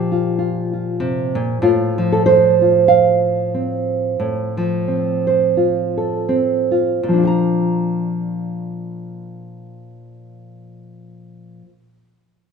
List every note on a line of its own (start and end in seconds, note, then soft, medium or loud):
0.00 1.34 A#2 medium
0.00 1.98 F3 medium
0.00 1.63 G4 medium
0.12 0.38 F4 soft
0.39 0.73 F4 soft
0.74 1.62 F4 soft
1.00 1.35 C3 medium
1.35 1.61 A#2 medium
1.62 4.15 A2 medium
1.62 2.61 F4 medium
1.98 4.56 F3 medium
2.12 2.25 A4 medium
2.26 2.88 C5 loud
2.62 5.57 F4 soft
2.88 5.27 F5 medium
3.54 4.16 C4 medium
4.20 7.00 A2 medium
4.57 7.07 F3 medium
4.88 6.27 C4 soft
5.27 5.97 C5 medium
5.57 6.70 F4 medium
5.97 7.00 A4 soft
6.29 7.00 C4 medium
6.71 7.00 F4 medium
7.03 11.61 A#2 medium
7.08 11.64 F3 medium
7.13 11.66 D4 soft
7.18 11.69 F4 soft
7.23 7.27 G4 soft
7.23 11.69 A#5 medium